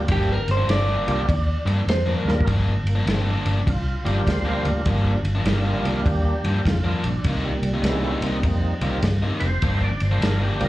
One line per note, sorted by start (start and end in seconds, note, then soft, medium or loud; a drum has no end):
0.08 0.37 G1 medium
0.08 0.33 G2 medium
0.08 0.33 F3 medium
0.08 0.34 A#3 loud
0.08 0.34 D4 loud
0.08 0.32 G4 loud
0.08 kick loud
0.08 ride medium
0.32 0.50 A#4 medium
0.47 0.63 G1 medium
0.47 0.69 C5 loud
0.47 snare soft
0.47 ride medium
0.57 0.67 G2 medium
0.57 0.68 F3 medium
0.57 0.69 A#3 medium
0.57 0.68 D4 medium
0.68 0.96 G1 loud
0.68 0.88 G2 medium
0.68 0.87 F3 medium
0.68 0.88 A#3 medium
0.68 0.87 D4 medium
0.68 1.85 D5 medium
0.68 snare loud
0.68 ride medium
0.88 1.05 G2 medium
0.88 1.06 F3 medium
0.88 1.06 A#3 medium
0.88 1.07 D4 medium
1.06 1.23 C2 medium
1.06 1.20 G2 medium
1.06 1.21 F3 medium
1.06 1.26 G3 medium
1.06 1.26 A#3 medium
1.06 1.21 A#3 medium
1.06 1.26 D4 medium
1.06 1.21 D4 loud
1.06 1.26 F4 medium
1.06 1.26 G4 medium
1.06 ride medium
1.28 1.56 D#2 loud
1.28 muted overdriven electric guitar stroke medium
1.28 kick loud
1.28 ride medium
1.65 1.81 G2 medium
1.65 1.80 G2 medium
1.65 1.80 F3 medium
1.65 1.80 A#3 medium
1.65 1.81 D4 medium
1.65 ride medium
1.87 2.15 F2 medium
1.87 2.08 C5 medium
1.87 snare loud
1.87 ride medium
2.06 2.29 G2 medium
2.06 2.29 F3 medium
2.06 2.29 A#3 medium
2.06 2.29 D4 medium
2.06 2.47 A#4 loud
2.25 2.41 D#2 medium
2.25 2.47 G3 medium
2.25 2.47 A#3 medium
2.25 2.47 D4 medium
2.25 2.47 F4 medium
2.25 2.48 A#4 medium
2.25 snare medium
2.41 kick medium
2.46 2.75 G1 medium
2.46 2.72 G2 medium
2.46 2.72 F3 medium
2.46 2.72 A#3 medium
2.46 2.72 D4 medium
2.46 kick loud
2.46 ride medium
2.84 3.00 G1 medium
2.84 ride medium
2.89 3.07 A#3 medium
2.95 3.04 G2 medium
2.95 3.04 F3 medium
2.95 3.05 A#3 medium
2.95 3.05 D4 medium
3.06 3.34 G1 medium
3.06 3.24 G2 medium
3.06 3.24 F3 medium
3.06 3.24 A#3 medium
3.06 3.27 C4 medium
3.06 3.23 D4 medium
3.06 snare loud
3.06 ride medium
3.24 3.44 G2 medium
3.24 3.44 F3 medium
3.24 3.44 A#3 medium
3.24 3.44 D4 medium
3.28 3.66 D4 medium
3.45 3.60 G1 medium
3.45 3.59 G2 medium
3.45 3.59 F3 medium
3.45 3.59 A#3 medium
3.45 3.59 D4 loud
3.45 ride medium
3.67 3.94 C2 medium
3.67 4.04 F4 medium
3.67 muted overdriven electric guitar stroke soft
3.67 kick loud
3.67 ride medium
4.04 4.20 G1 medium
4.04 4.19 G2 medium
4.04 4.19 F3 medium
4.04 4.81 G3 medium
4.04 4.82 A#3 medium
4.04 4.19 A#3 medium
4.04 4.66 D4 medium
4.04 4.20 D4 medium
4.04 4.67 F4 medium
4.04 4.26 G4 medium
4.04 ride medium
4.27 4.54 D2 medium
4.27 4.65 C5 medium
4.27 kick medium
4.27 snare loud
4.27 ride medium
4.45 4.68 G2 medium
4.45 4.68 F3 medium
4.45 4.68 A#3 medium
4.45 4.68 D4 medium
4.65 4.80 D2 medium
4.65 4.85 D4 medium
4.65 4.85 F4 loud
4.65 ride medium
4.85 5.14 G1 medium
4.85 5.11 G2 medium
4.85 5.11 F3 medium
4.85 5.20 G3 medium
4.85 5.20 A#3 medium
4.85 5.11 A#3 loud
4.85 5.20 D4 medium
4.85 5.12 D4 medium
4.85 5.20 F4 medium
4.85 kick loud
4.85 ride medium
5.23 5.39 G1 medium
5.23 ride medium
5.35 5.44 G2 medium
5.35 5.45 F3 medium
5.35 5.45 A#3 medium
5.35 5.45 D4 medium
5.44 5.72 G1 medium
5.44 5.65 G2 medium
5.44 5.65 F3 medium
5.44 6.35 G3 medium
5.44 6.36 A#3 medium
5.44 5.65 A#3 medium
5.44 6.36 D4 medium
5.44 5.65 D4 medium
5.44 5.87 F4 medium
5.44 snare loud
5.44 ride medium
5.66 5.84 G2 medium
5.66 5.84 F3 medium
5.66 5.84 A#3 medium
5.66 5.84 D4 medium
5.83 5.99 C2 medium
5.83 5.98 G2 medium
5.83 5.98 F3 loud
5.83 5.99 A#3 medium
5.83 5.99 D4 medium
5.83 ride medium
5.88 6.06 F4 medium
6.03 6.33 D#2 medium
6.03 6.07 F#4 medium
6.03 muted overdriven electric guitar stroke soft
6.03 kick loud
6.03 ride medium
6.07 6.64 G4 medium
6.44 6.59 G2 medium
6.44 6.58 G2 medium
6.44 6.58 F3 medium
6.44 6.58 A#3 medium
6.44 6.59 D4 loud
6.44 ride medium
6.65 6.93 F2 medium
6.65 6.85 F4 medium
6.65 kick medium
6.65 snare loud
6.65 ride medium
6.84 7.07 G2 medium
6.84 7.07 F3 medium
6.84 7.07 A#3 medium
6.84 7.06 D4 loud
6.84 7.05 F4 medium
7.04 7.19 A#1 medium
7.04 7.24 D4 medium
7.04 ride medium
7.24 7.52 C2 medium
7.24 7.50 C3 medium
7.24 7.50 G3 medium
7.24 7.44 A#3 medium
7.24 7.51 A#3 loud
7.24 7.51 D#4 loud
7.24 kick loud
7.24 ride medium
7.45 8.60 A#2 medium
7.45 8.21 G3 loud
7.62 7.78 C2 medium
7.62 ride medium
7.74 7.83 C3 medium
7.74 7.84 G3 medium
7.74 7.83 A#3 medium
7.74 7.84 D#4 medium
7.83 8.11 C2 loud
7.83 8.03 C3 medium
7.83 8.03 G3 medium
7.83 8.18 G#3 medium
7.83 8.03 A#3 medium
7.83 8.19 B3 medium
7.83 8.19 C#4 medium
7.83 8.02 D#4 medium
7.83 8.19 E4 medium
7.83 snare loud
7.83 ride medium
8.03 8.21 C3 medium
8.03 8.21 G3 medium
8.03 8.22 A#3 medium
8.03 8.22 D#4 medium
8.22 8.37 C2 medium
8.22 8.36 C3 medium
8.22 8.74 G3 medium
8.22 8.36 G3 medium
8.22 8.75 A#3 medium
8.22 8.37 A#3 medium
8.22 8.75 C4 medium
8.22 8.75 D#4 medium
8.22 8.37 D#4 medium
8.22 ride medium
8.43 8.71 F2 loud
8.43 muted overdriven electric guitar stroke soft
8.43 kick loud
8.43 ride medium
8.81 8.97 C2 medium
8.81 8.96 C3 medium
8.81 9.01 G3 medium
8.81 8.96 G3 medium
8.81 9.01 A#3 medium
8.81 8.96 A#3 medium
8.81 9.01 C4 medium
8.81 8.96 D#4 medium
8.81 9.01 F4 medium
8.81 ride medium
9.02 9.31 G2 medium
9.02 kick medium
9.02 snare loud
9.02 ride medium
9.22 9.45 C3 medium
9.22 9.45 G3 medium
9.22 9.45 A#3 medium
9.22 9.45 D#4 medium
9.40 9.57 F1 medium
9.40 9.45 B4 medium
9.40 ride medium
9.44 9.82 C5 loud
9.62 9.91 G1 medium
9.62 9.88 G2 medium
9.62 9.88 F3 medium
9.62 9.88 A#3 medium
9.62 9.88 D4 medium
9.62 kick loud
9.62 ride medium
9.83 10.02 D5 medium
10.00 10.17 G1 medium
10.00 ride medium
10.05 10.23 C5 medium
10.11 10.21 G2 medium
10.11 10.22 F3 medium
10.11 10.22 A#3 medium
10.11 10.22 D4 medium
10.21 10.49 G1 loud
10.21 10.40 G2 medium
10.21 10.40 F3 medium
10.21 10.39 A#3 medium
10.21 10.39 D4 medium
10.21 10.42 A#4 medium
10.21 snare loud
10.21 ride medium
10.40 10.60 G2 medium
10.40 10.60 F3 medium
10.40 10.60 A#3 medium
10.40 10.60 D4 medium
10.40 10.62 G4 medium
10.60 10.69 C2 medium
10.60 10.69 G2 medium
10.60 10.69 F3 medium
10.60 10.69 G3 medium
10.60 10.69 A#3 medium
10.60 10.69 D4 medium
10.60 10.69 A#4 medium
10.60 ride medium